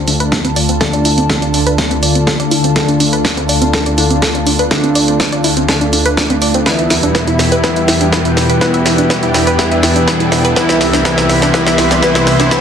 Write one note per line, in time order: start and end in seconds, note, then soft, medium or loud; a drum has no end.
0.00 6.62 D2 medium
0.00 6.62 D3 medium
0.00 6.62 A3 medium
0.00 6.62 F4 medium
0.00 6.66 F4 medium
0.00 7.31 D5 medium
0.00 7.63 A5 medium
0.00 riser medium
0.08 0.30 D3 medium
0.08 0.30 A3 medium
0.08 0.30 D4 medium
0.08 0.11 D4 medium
0.08 mid tom medium
0.08 open hi-hat loud
0.20 0.25 B4 loud
0.20 closed hi-hat medium
0.32 0.37 D4 medium
0.32 kick loud
0.32 snare soft
0.32 closed hi-hat medium
0.45 0.49 C4 medium
0.45 closed hi-hat soft
0.45 mid tom medium
0.56 0.62 D5 medium
0.56 open hi-hat medium
0.69 0.74 C4 medium
0.69 closed hi-hat medium
0.81 1.75 D3 medium
0.81 1.76 A3 medium
0.81 1.75 D4 loud
0.81 0.86 A4 loud
0.81 kick loud
0.81 snare soft
0.81 closed hi-hat medium
0.93 0.98 D5 medium
0.93 closed hi-hat soft
1.05 1.10 E4 medium
1.05 open hi-hat loud
1.18 1.23 C4 medium
1.18 closed hi-hat medium
1.18 mid tom medium
1.29 1.35 A4 loud
1.29 kick loud
1.29 snare soft
1.29 closed hi-hat medium
1.42 1.49 D4 medium
1.42 closed hi-hat soft
1.54 1.57 D4 medium
1.54 mid tom medium
1.54 open hi-hat medium
1.67 1.71 B4 loud
1.67 closed hi-hat medium
1.78 2.73 D3 medium
1.78 2.73 A3 medium
1.78 2.73 D4 medium
1.78 1.83 D4 medium
1.78 kick loud
1.78 snare medium
1.78 closed hi-hat medium
1.91 1.96 C4 medium
1.91 closed hi-hat soft
1.91 mid tom medium
2.03 2.08 D5 medium
2.03 open hi-hat loud
2.15 2.20 C4 medium
2.15 closed hi-hat medium
2.27 2.32 A4 loud
2.27 kick loud
2.27 snare medium
2.27 closed hi-hat medium
2.40 2.45 D5 medium
2.40 closed hi-hat soft
2.51 2.57 E4 medium
2.51 open hi-hat medium
2.64 2.69 C4 medium
2.64 closed hi-hat medium
2.64 mid tom medium
2.76 3.95 D3 loud
2.76 3.95 A3 medium
2.76 3.95 D4 loud
2.76 2.81 A4 loud
2.76 kick loud
2.76 snare medium
2.76 closed hi-hat medium
2.88 2.96 D4 medium
2.88 closed hi-hat soft
3.00 3.03 D4 medium
3.00 mid tom medium
3.00 open hi-hat loud
3.13 3.18 B4 loud
3.13 closed hi-hat medium
3.25 3.30 D4 medium
3.25 kick loud
3.25 snare medium
3.25 closed hi-hat medium
3.37 3.42 C4 medium
3.37 closed hi-hat soft
3.37 mid tom medium
3.49 3.54 D5 medium
3.49 open hi-hat medium
3.62 3.66 C4 medium
3.62 closed hi-hat medium
3.73 3.79 A4 loud
3.73 kick loud
3.73 snare medium
3.73 closed hi-hat medium
3.86 3.91 D5 medium
3.86 closed hi-hat soft
3.98 4.20 D3 medium
3.98 4.20 A3 medium
3.98 4.20 D4 medium
3.98 4.03 E4 medium
3.98 open hi-hat loud
4.10 4.15 C4 medium
4.10 closed hi-hat medium
4.10 mid tom medium
4.22 4.27 A4 loud
4.22 kick loud
4.22 snare medium
4.22 closed hi-hat medium
4.35 4.42 D4 medium
4.35 closed hi-hat soft
4.47 4.50 D4 medium
4.47 mid tom medium
4.47 open hi-hat medium
4.59 4.64 B4 loud
4.59 closed hi-hat medium
4.71 5.66 D3 loud
4.71 5.66 A3 medium
4.71 5.66 D4 loud
4.71 4.76 D4 medium
4.71 kick loud
4.71 snare medium
4.71 closed hi-hat medium
4.84 4.89 C4 medium
4.84 closed hi-hat soft
4.84 mid tom medium
4.95 5.01 D5 medium
4.95 open hi-hat loud
5.08 5.13 C4 medium
5.08 closed hi-hat medium
5.20 5.25 A4 loud
5.20 kick loud
5.20 snare medium
5.20 closed hi-hat medium
5.20 mid tom medium
5.32 5.37 D5 medium
5.32 closed hi-hat soft
5.44 5.49 E4 medium
5.44 open hi-hat medium
5.57 5.62 C4 medium
5.57 closed hi-hat medium
5.57 mid tom medium
5.68 6.63 D3 medium
5.68 6.63 A3 medium
5.68 6.63 D4 medium
5.68 5.74 A4 loud
5.68 kick loud
5.68 snare medium
5.68 closed hi-hat medium
5.81 5.88 D4 medium
5.81 closed hi-hat soft
5.93 5.96 D4 medium
5.93 mid tom medium
5.93 open hi-hat loud
6.06 6.10 B4 loud
6.06 closed hi-hat medium
6.17 6.22 D4 medium
6.17 kick loud
6.17 snare medium
6.17 closed hi-hat medium
6.30 6.35 C4 medium
6.30 closed hi-hat soft
6.30 mid tom medium
6.42 6.47 D5 medium
6.42 open hi-hat medium
6.54 6.59 C4 medium
6.54 closed hi-hat medium
6.66 10.53 E2 medium
6.66 10.53 B2 medium
6.66 7.62 E3 medium
6.66 10.53 G3 medium
6.66 7.62 B3 medium
6.66 8.59 E4 medium
6.66 7.62 E4 loud
6.66 12.61 E4 medium
6.66 6.71 B4 loud
6.66 kick loud
6.66 snare medium
6.66 closed hi-hat medium
6.79 6.84 E5 medium
6.79 closed hi-hat soft
6.79 mid tom medium
6.83 12.61 G5 medium
6.90 6.96 E4 medium
6.90 snare medium
6.90 open hi-hat loud
7.03 7.08 D4 medium
7.03 10.56 B4 medium
7.03 closed hi-hat medium
7.15 7.20 B4 medium
7.15 kick loud
7.15 snare medium
7.15 closed hi-hat medium
7.27 7.35 E4 medium
7.27 closed hi-hat soft
7.39 7.42 E4 medium
7.39 snare medium
7.39 open hi-hat medium
7.52 7.57 B4 loud
7.52 closed hi-hat medium
7.52 mid tom medium
7.64 8.59 E3 medium
7.64 8.59 B3 medium
7.64 8.59 E4 loud
7.64 7.69 B4 medium
7.64 kick loud
7.64 snare medium
7.64 closed hi-hat soft
7.76 7.81 E5 medium
7.76 closed hi-hat soft
7.88 7.93 E4 medium
7.88 snare medium
7.88 mid tom medium
7.88 open hi-hat loud
8.01 8.06 D4 medium
8.01 closed hi-hat medium
8.12 8.18 B4 medium
8.12 kick loud
8.12 snare medium
8.12 closed hi-hat medium
8.25 8.32 E4 medium
8.25 closed hi-hat soft
8.25 mid tom medium
8.37 8.40 E4 medium
8.37 snare medium
8.37 open hi-hat medium
8.50 8.54 B4 loud
8.50 closed hi-hat medium
8.61 9.57 E3 medium
8.61 9.57 B3 medium
8.61 10.54 D4 medium
8.61 9.57 E4 loud
8.61 8.66 B4 loud
8.61 kick loud
8.61 snare medium
8.61 closed hi-hat medium
8.74 8.79 E5 medium
8.74 closed hi-hat soft
8.86 8.91 E4 medium
8.86 snare medium
8.86 open hi-hat loud
8.98 9.03 D4 medium
8.98 closed hi-hat medium
8.98 mid tom medium
9.10 9.15 B4 medium
9.10 kick loud
9.10 snare medium
9.10 closed hi-hat medium
9.23 9.30 E4 medium
9.23 closed hi-hat soft
9.34 9.38 E4 medium
9.34 snare medium
9.34 mid tom medium
9.34 open hi-hat medium
9.47 9.52 B4 medium
9.47 closed hi-hat medium
9.59 10.55 E3 medium
9.59 10.55 B3 medium
9.59 10.55 E4 loud
9.59 9.64 B4 loud
9.59 kick loud
9.59 snare medium
9.59 closed hi-hat medium
9.72 9.76 E5 medium
9.72 closed hi-hat soft
9.72 mid tom medium
9.83 9.88 E4 medium
9.83 snare medium
9.83 open hi-hat loud
9.96 10.01 D4 medium
9.96 closed hi-hat medium
10.08 10.13 B4 loud
10.08 kick loud
10.08 snare medium
10.08 closed hi-hat medium
10.20 10.27 E4 medium
10.20 closed hi-hat soft
10.32 10.35 E4 medium
10.32 snare medium
10.32 open hi-hat medium
10.45 10.49 B4 loud
10.45 closed hi-hat medium
10.45 mid tom medium
10.56 12.61 C2 medium
10.56 12.61 C3 medium
10.56 11.03 E3 medium
10.56 12.61 G3 medium
10.56 11.03 B3 medium
10.56 11.03 E4 loud
10.56 12.61 E4 loud
10.56 10.62 B4 loud
10.56 kick loud
10.56 snare medium
10.56 closed hi-hat medium
10.69 10.74 E5 medium
10.69 snare medium
10.69 closed hi-hat soft
10.81 10.86 E4 medium
10.81 snare medium
10.81 mid tom medium
10.81 open hi-hat loud
10.93 10.98 D4 medium
10.93 snare medium
10.93 closed hi-hat medium
11.00 12.61 C6 medium
11.05 11.52 E3 loud
11.05 11.52 B3 medium
11.05 11.52 E4 loud
11.05 11.10 B4 loud
11.05 kick loud
11.05 snare medium
11.05 closed hi-hat medium
11.18 11.23 E5 medium
11.18 snare medium
11.18 closed hi-hat soft
11.29 11.35 E4 medium
11.29 snare medium
11.29 open hi-hat medium
11.42 11.47 D4 medium
11.42 snare medium
11.42 closed hi-hat medium
11.54 12.01 E3 loud
11.54 12.01 B3 medium
11.54 12.01 E4 loud
11.54 11.59 B4 loud
11.54 kick loud
11.54 snare medium
11.54 closed hi-hat medium
11.67 11.71 E5 medium
11.67 snare medium
11.67 closed hi-hat soft
11.78 11.83 E4 medium
11.78 snare loud
11.78 open hi-hat loud
11.91 11.96 D4 medium
11.91 snare medium
11.91 closed hi-hat medium
12.03 12.50 E3 loud
12.03 12.50 B3 medium
12.03 12.50 E4 loud
12.03 12.08 B4 loud
12.03 kick loud
12.03 snare medium
12.03 closed hi-hat medium
12.15 12.20 E5 medium
12.15 snare medium
12.15 closed hi-hat soft
12.27 12.32 E4 medium
12.27 snare loud
12.27 open hi-hat medium
12.40 12.45 D4 medium
12.40 snare medium
12.40 closed hi-hat medium
12.51 12.61 E3 medium
12.51 12.61 B3 medium
12.51 12.61 E4 loud
12.51 12.57 B4 loud
12.51 kick loud
12.51 snare loud
12.51 closed hi-hat medium